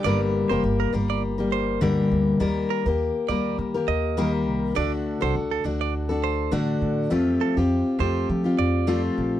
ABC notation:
X:1
M:4/4
L:1/16
Q:"Swing 16ths" 1/4=102
K:Gm
V:1 name="Clean electric guitar"
d z2 c z B z d z2 c2 z4 | z2 B z3 d2 z2 e3 z3 | d z2 c z A z d z2 c2 z4 | z2 A z3 c2 z2 d3 z3 |]
V:2 name="Steel-string acoustic guitar"
[G,,D,G,B,GB]3 [G,B,GB]3 [G,B,GB]3 [G,B,GB]3 [G,,D,G,B,GB]4 | [E,G,B,GB]3 [B,GB]3 [G,B,GB]3 [B,GB]3 [E,G,B,GB]4 | [D,A,D^FA]3 [DFA]3 [A,DFA]3 [DFA]3 [D,A,DFA]4 | [F,A,CFG]3 [CFG]3 [A,CFG]3 [CFG]3 [F,A,CFG]4 |]
V:3 name="Upright bass" clef=bass
G,,,3 F,,, G,,,2 G,,,6 D,,2 D,,2 | E,,2 z E,,2 z E,,2 E,2 E,,4 C,,2 | D,,3 C,, D,,2 D,,6 A,,2 A,,2 | F,,2 z F,,2 z F,,2 F,2 F,,4 B,,,2 |]